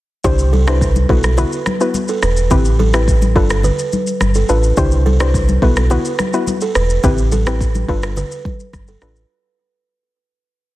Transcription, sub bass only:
0.25 1.05 C2 loud
1.09 1.45 B1 medium
2.22 2.52 E1 medium
2.51 3.37 A1 loud
3.36 3.71 G1 loud
4.21 4.44 G1 medium
4.49 4.72 A1 loud
4.77 5.58 C2 loud
5.62 5.97 B1 loud
6.75 6.99 E1 medium
7.04 7.85 A1 loud
7.88 8.24 G1 medium
8.73 8.97 G1 medium
9.02 9.25 A1 loud

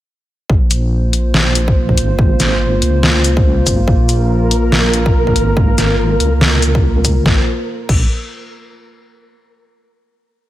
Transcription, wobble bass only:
0.50 1.33 A#1 loud
1.34 1.96 A#1 loud
1.98 2.81 G#1 loud
2.82 3.65 C#2 loud
3.66 3.86 G#1 loud
3.88 4.71 A#1 medium
4.72 5.34 A#1 loud
5.36 6.19 G#1 loud
6.20 7.24 C#2 loud
7.26 7.39 A#1 medium
7.89 8.09 A#1 medium

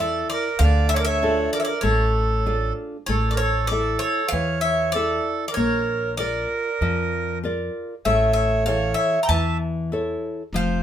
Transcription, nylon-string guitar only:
0.00 0.48 E4 medium
0.00 0.48 E5 medium
0.60 1.20 D3 medium
1.23 1.72 D4 soft
1.23 1.72 F4 soft
1.23 1.73 A4 medium
1.83 2.44 A3 medium
2.46 2.96 D4 soft
2.46 2.96 F4 soft
2.46 2.96 A4 medium
3.09 3.69 A3 medium
3.71 4.21 E4 soft
3.71 4.21 A4 soft
3.71 4.21 E5 medium
4.32 4.93 E3 medium
4.95 5.45 E4 soft
4.95 5.45 A4 soft
4.95 5.45 E5 medium
5.57 6.17 A#3 medium
6.19 6.69 F4 soft
6.19 6.69 A#4 soft
6.19 6.69 D5 medium
6.82 7.42 F3 medium
7.43 7.93 F4 medium
7.43 7.93 A#4 soft
7.43 7.94 D5 medium
8.06 8.66 A3 medium
8.67 9.17 E3 soft
8.67 9.17 A4 soft
8.67 9.17 C#5 medium
9.30 9.90 E3 medium
9.92 10.41 E4 medium
9.92 10.42 A4 soft
9.92 10.42 C#5 medium
10.54 10.83 F3 medium

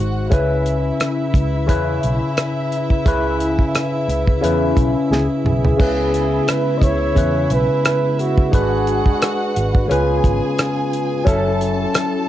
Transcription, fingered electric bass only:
0.00 0.28 G#1 medium
0.32 0.90 C#2 loud
1.34 1.69 C#2 medium
1.69 1.98 E2 medium
2.04 2.19 B1 medium
3.06 3.64 C#2 medium
4.08 4.37 C#2 medium
4.43 4.72 E2 medium
4.77 4.93 B1 medium
5.11 5.26 C#2 medium
5.44 5.74 B1 medium
5.80 6.38 C#2 medium
6.82 7.11 C#2 medium
7.17 7.45 E2 medium
7.50 7.66 B1 medium
8.53 9.11 G#1 medium
9.57 9.85 G#1 medium
9.91 10.19 C#2 medium
10.25 10.40 G#1 medium
11.27 11.85 F#1 medium

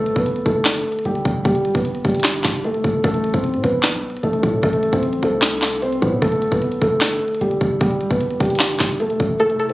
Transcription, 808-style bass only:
0.00 0.15 G1 loud
0.16 0.45 G1 loud
0.46 0.84 G1 loud
1.05 1.25 G1 loud
1.25 1.44 G1 loud
1.45 1.74 G1 loud
1.75 2.04 G1 loud
2.05 2.43 G1 loud
2.45 2.64 G1 loud
2.84 3.03 G1 loud
3.04 3.33 A1 loud
3.34 3.55 A1 loud
3.54 3.63 A2 loud
3.64 3.95 A1 loud
3.94 4.03 C2 loud
4.23 4.42 A1 loud
4.43 4.62 A2 loud
4.63 4.92 A1 loud
4.93 5.21 A1 loud
5.23 5.99 C2 loud
6.02 6.21 A2 loud
6.22 6.51 G1 loud
6.52 6.80 G1 loud
6.82 7.20 G1 loud
7.41 7.60 G1 loud
7.61 7.80 G1 loud
7.81 8.10 G1 loud
8.11 8.39 G1 loud
8.40 8.79 G1 loud
8.80 8.99 G1 loud
9.20 9.39 A1 loud

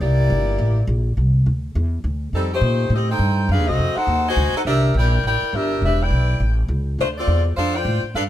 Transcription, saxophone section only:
0.01 0.84 A#3 medium
0.01 0.84 E4 medium
0.01 0.84 G4 medium
0.01 0.84 D5 loud
2.35 2.50 G3 medium
2.35 2.50 C4 medium
2.35 2.50 D#4 medium
2.35 2.50 A4 loud
2.54 2.90 A3 medium
2.54 2.90 D#4 medium
2.54 2.90 G4 medium
2.54 2.90 C5 loud
2.94 3.10 C4 loud
2.94 3.10 G4 medium
2.94 3.09 A4 medium
2.94 3.10 D#5 loud
3.10 3.47 D#4 medium
3.10 3.47 A4 medium
3.10 3.47 C5 medium
3.10 3.47 G5 loud
3.50 3.67 D4 loud
3.50 3.68 G#4 medium
3.50 3.67 B4 medium
3.50 3.67 F5 loud
3.67 3.95 C4 medium
3.67 3.95 F#4 loud
3.67 3.95 A4 medium
3.67 3.96 D#5 loud
3.96 4.25 D#4 loud
3.96 4.25 A4 loud
3.96 4.25 C5 loud
3.96 4.25 F#5 loud
4.28 4.53 F#4 medium
4.28 4.54 C5 loud
4.28 4.54 D#5 loud
4.28 4.54 G#5 loud
4.56 4.61 D#4 medium
4.56 4.60 A4 medium
4.56 4.60 C5 medium
4.56 4.61 F#5 loud
4.66 4.93 D4 loud
4.66 4.93 G4 medium
4.66 4.93 A#4 medium
4.66 4.93 E5 loud
4.97 5.23 E4 medium
4.97 5.23 A#4 medium
4.97 5.23 D5 medium
4.97 5.23 G5 loud
5.26 5.52 E4 loud
5.26 5.52 A#4 loud
5.26 5.52 D5 loud
5.26 5.52 G5 loud
5.54 5.83 D4 loud
5.54 5.82 G4 loud
5.54 5.82 A#4 medium
5.54 5.82 E5 loud
5.84 5.99 D4 medium
5.84 6.00 G4 medium
5.84 6.00 B4 medium
5.84 6.00 E5 loud
6.02 6.41 E4 medium
6.02 6.41 B4 medium
6.02 6.41 D5 medium
6.02 6.59 G5 loud
7.00 7.07 A3 medium
7.00 7.07 D4 medium
7.00 7.07 F4 medium
7.00 7.08 C5 loud
7.18 7.44 C4 loud
7.18 7.44 F4 loud
7.18 7.44 A4 medium
7.18 7.43 D5 loud
7.57 7.73 D4 loud
7.57 7.73 A4 loud
7.57 7.73 C5 loud
7.57 7.72 F5 loud
7.74 8.03 F4 medium
7.74 8.03 C5 loud
7.74 8.03 D5 medium
7.74 8.03 G5 loud
8.15 8.23 D4 medium
8.15 8.23 A4 loud
8.15 8.23 B4 medium
8.15 8.23 F5 loud

